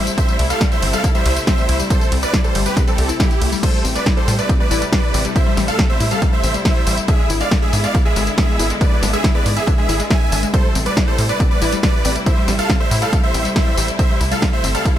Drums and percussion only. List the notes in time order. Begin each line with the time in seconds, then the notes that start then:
0.07 closed hi-hat, tambourine
0.18 kick, closed hi-hat, ride, tambourine
0.28 closed hi-hat, tambourine
0.39 open hi-hat, ride
0.50 closed hi-hat, tambourine
0.61 kick, snare, closed hi-hat, ride, tambourine
0.72 closed hi-hat, tambourine
0.82 open hi-hat, ride
0.93 closed hi-hat, tambourine
1.04 kick, closed hi-hat, ride, tambourine
1.15 closed hi-hat, tambourine
1.26 open hi-hat, ride
1.36 closed hi-hat, tambourine
1.47 kick, snare, closed hi-hat, ride, tambourine
1.58 tambourine
1.69 open hi-hat, ride
1.80 closed hi-hat, tambourine
1.90 kick, closed hi-hat, ride, tambourine
2.01 closed hi-hat, tambourine
2.12 open hi-hat, ride
2.23 closed hi-hat, tambourine
2.34 kick, snare, closed hi-hat, ride, tambourine
2.44 closed hi-hat, tambourine
2.55 open hi-hat, ride
2.66 closed hi-hat, tambourine
2.77 kick, snare, closed hi-hat, ride, tambourine
2.88 closed hi-hat, tambourine
2.98 open hi-hat, ride
3.09 closed hi-hat, tambourine
3.20 kick, snare, closed hi-hat, ride, tambourine
3.31 closed hi-hat, tambourine
3.42 open hi-hat, ride
3.52 open hi-hat, tambourine
3.63 kick, closed hi-hat, crash, ride, tambourine
3.85 open hi-hat, tambourine
3.96 closed hi-hat, tambourine
4.06 kick, snare, closed hi-hat, ride, tambourine
4.28 open hi-hat, tambourine
4.39 closed hi-hat, tambourine
4.49 kick, closed hi-hat, ride, tambourine
4.71 open hi-hat, tambourine
4.82 closed hi-hat, tambourine
4.92 kick, snare, closed hi-hat, ride, tambourine
5.14 open hi-hat, tambourine
5.25 closed hi-hat, tambourine
5.36 kick, closed hi-hat, ride, tambourine
5.57 snare, open hi-hat, tambourine
5.68 closed hi-hat, tambourine
5.79 kick, snare, closed hi-hat, ride, tambourine
6.00 open hi-hat, tambourine
6.11 closed hi-hat, tambourine
6.22 kick, closed hi-hat, ride, tambourine
6.44 open hi-hat, tambourine
6.54 closed hi-hat, tambourine
6.65 kick, snare, closed hi-hat, ride, tambourine
6.87 open hi-hat, tambourine
6.98 closed hi-hat, tambourine
7.08 kick, closed hi-hat, ride, tambourine
7.30 open hi-hat, tambourine
7.41 closed hi-hat, tambourine
7.51 kick, snare, closed hi-hat, ride, tambourine
7.73 open hi-hat, tambourine
7.84 closed hi-hat, tambourine
7.95 kick, closed hi-hat, ride, tambourine
8.16 open hi-hat, tambourine
8.27 closed hi-hat, tambourine
8.38 kick, snare, closed hi-hat, ride, tambourine
8.59 open hi-hat, tambourine
8.70 closed hi-hat, tambourine
8.81 kick, closed hi-hat, ride, tambourine
9.03 snare, open hi-hat, tambourine
9.13 closed hi-hat, tambourine
9.24 kick, snare, closed hi-hat, ride, tambourine
9.46 open hi-hat, tambourine
9.57 closed hi-hat, tambourine
9.67 kick, closed hi-hat, ride, tambourine
9.89 open hi-hat, tambourine
10.00 closed hi-hat, tambourine
10.11 kick, snare, closed hi-hat, ride, tambourine
10.32 open hi-hat, tambourine
10.43 closed hi-hat, tambourine
10.54 kick, closed hi-hat, ride, tambourine
10.75 open hi-hat, tambourine
10.86 closed hi-hat, tambourine
10.97 kick, snare, closed hi-hat, ride, tambourine
11.18 open hi-hat, tambourine
11.29 closed hi-hat, tambourine
11.40 kick, closed hi-hat, ride, tambourine
11.62 open hi-hat, tambourine
11.72 closed hi-hat, tambourine
11.83 kick, snare, closed hi-hat, ride, tambourine
12.05 open hi-hat, tambourine
12.16 closed hi-hat, tambourine
12.26 kick, closed hi-hat, ride, tambourine
12.48 snare, open hi-hat, tambourine
12.59 closed hi-hat, tambourine
12.70 kick, snare, closed hi-hat, ride, tambourine
12.91 open hi-hat, tambourine
13.02 closed hi-hat, tambourine
13.13 kick, closed hi-hat, ride, tambourine
13.34 open hi-hat, tambourine
13.45 closed hi-hat, tambourine
13.56 kick, snare, closed hi-hat, ride, tambourine
13.77 open hi-hat, tambourine
13.88 closed hi-hat, tambourine
13.99 kick, closed hi-hat, ride, tambourine
14.21 open hi-hat, tambourine
14.32 closed hi-hat, tambourine
14.42 kick, snare, closed hi-hat, ride, tambourine
14.64 open hi-hat, tambourine
14.75 closed hi-hat, tambourine
14.85 kick, closed hi-hat, ride, tambourine